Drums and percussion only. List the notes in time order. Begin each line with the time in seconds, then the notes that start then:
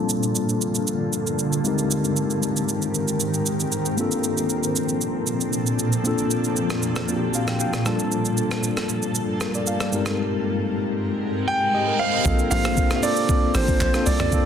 0.09 shaker
0.23 shaker
0.35 shaker
0.49 shaker
0.62 shaker
0.75 shaker
0.87 shaker
1.13 shaker
1.27 shaker
1.39 shaker
1.53 shaker
1.65 shaker
1.78 shaker
1.91 shaker
2.05 shaker
2.17 shaker
2.30 shaker
2.43 shaker
2.57 shaker
2.69 shaker
2.82 shaker
2.95 shaker
3.08 shaker
3.20 shaker
3.34 shaker
3.46 shaker
3.60 shaker
3.72 shaker
3.86 shaker
3.98 shaker
4.12 shaker
4.24 shaker
4.38 shaker
4.50 shaker
4.64 shaker
4.76 shaker
4.89 shaker
5.01 shaker
5.27 shaker
5.41 shaker
5.53 shaker
5.67 shaker
5.79 shaker
5.93 shaker
6.05 shaker
6.18 shaker
6.31 shaker
6.44 shaker
6.57 shaker
6.70 cross-stick, shaker
6.83 shaker
6.96 cross-stick, shaker
7.09 shaker
7.34 shaker
7.48 cross-stick, shaker
7.60 shaker
7.74 cross-stick, shaker
7.86 cross-stick, shaker
7.99 shaker
8.12 shaker
8.25 shaker
8.38 shaker
8.51 cross-stick, shaker
8.63 shaker
8.77 cross-stick, shaker
8.89 shaker
9.02 shaker
9.15 shaker
9.41 cross-stick, shaker
9.55 shaker
9.67 shaker
9.80 cross-stick, shaker
9.93 shaker
10.06 cross-stick, shaker
12.26 kick, shaker
12.39 shaker
12.51 open hi-hat, shaker
12.65 cross-stick, shaker
12.77 kick, shaker
12.91 cross-stick, shaker
13.03 open hi-hat, shaker
13.16 shaker
13.29 kick, shaker
13.55 cross-stick, open hi-hat, shaker
13.68 kick, shaker
13.80 kick, clap, shaker
13.94 cross-stick, shaker
14.06 open hi-hat, shaker
14.20 cross-stick, mid tom, shaker
14.32 kick, shaker